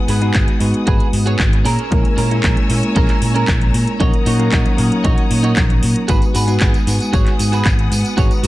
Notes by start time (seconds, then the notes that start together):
Already playing: G#3 B3 D#4 F#4 B4 F#5 G#5 D#6
0.08 G#2 F#4 G#4 B4, open hi-hat
0.21 G#3 B3 D#4 F#4 B4, closed hi-hat
0.34 G#1, kick, clap, closed hi-hat
0.48 closed hi-hat
0.59 G#2 G#3 B3 D#4 F#4 B4, open hi-hat
0.74 closed hi-hat
0.87 G#1 F#4 G#4 B4, kick, closed hi-hat
1.00 muted fingered electric bass stroke, closed hi-hat
1.13 G#2, open hi-hat
1.26 F#4 G#4 C#5, closed hi-hat
1.39 G#1, kick, clap, closed hi-hat
1.52 muted clean electric guitar stroke, closed hi-hat
1.65 A#2 C#4 G#4 A#4 C#5 G#5 A#5 E6, open hi-hat
1.79 closed hi-hat
1.91 A#1 G#3 A#3 C#4 E4 A#4, kick, closed hi-hat
2.05 closed hi-hat
2.17 A#2 C#4 G#4 A#4, open hi-hat
2.31 G#3 A#3 C#4 E4 A#4, closed hi-hat
2.43 A#1, kick, clap, closed hi-hat
2.57 closed hi-hat
2.69 A#2 G#3 A#3 C#4 E4 A#4, open hi-hat
2.83 closed hi-hat
2.95 A#1 C#4 G#4 A#4, kick, closed hi-hat
3.09 clap, closed hi-hat
3.22 A#2, open hi-hat
3.34 C#4 G#4 A#4, closed hi-hat
3.48 A#1, kick, clap, closed hi-hat
3.61 muted clean electric guitar stroke, closed hi-hat
3.74 A#2, open hi-hat
3.87 closed hi-hat
4.00 A#1 F#3 A#3 C#4 D#4 F#4 A#4 C#5 F#5 D#6, kick, closed hi-hat
4.14 closed hi-hat
4.26 A#2 D#4 F#4 C#5, open hi-hat
4.39 F#3 A#3 C#4 D#4 A#4, closed hi-hat
4.52 A#1, kick, clap, closed hi-hat
4.66 closed hi-hat
4.77 A#2 F#3 A#3 C#4 D#4 A#4, open hi-hat
4.92 closed hi-hat
5.04 A#1 D#4 F#4 C#5, kick, closed hi-hat
5.18 muted fingered electric bass stroke, closed hi-hat
5.31 A#2, open hi-hat
5.43 D#4 F#4 C#5, closed hi-hat
5.56 A#1, kick, clap, closed hi-hat
5.69 muted clean electric guitar stroke, closed hi-hat
5.83 A#2, open hi-hat
5.96 closed hi-hat
6.08 G#1 G#3 B3 D#4 F#4 G#4 B4 F#5 G#5 D#6, kick, closed hi-hat, tambourine
6.22 closed hi-hat, tambourine
6.34 G#2 F#4 G#4 B4, open hi-hat, tambourine
6.47 G#3 B3 D#4 F#4 B4, closed hi-hat, tambourine
6.60 G#1, kick, clap, closed hi-hat, tambourine
6.74 closed hi-hat, tambourine
6.87 G#2 G#3 B3 D#4 F#4 B4, open hi-hat, tambourine
7.00 closed hi-hat, tambourine
7.13 G#1 F#4 G#4 C#5, kick, closed hi-hat, tambourine
7.26 clap, closed hi-hat
7.39 G#2, open hi-hat, tambourine
7.52 F#4 G#4 B4, closed hi-hat, tambourine
7.65 G#1, kick, clap, closed hi-hat, tambourine
7.78 muted clean electric guitar stroke, closed hi-hat
7.91 G#2, open hi-hat, tambourine
8.05 closed hi-hat, tambourine
8.17 G#1 G#3 B3 D#4 F#4 G#4 B4 C#5 A#5, kick, closed hi-hat, tambourine
8.31 closed hi-hat, tambourine
8.43 G#2 F#4, open hi-hat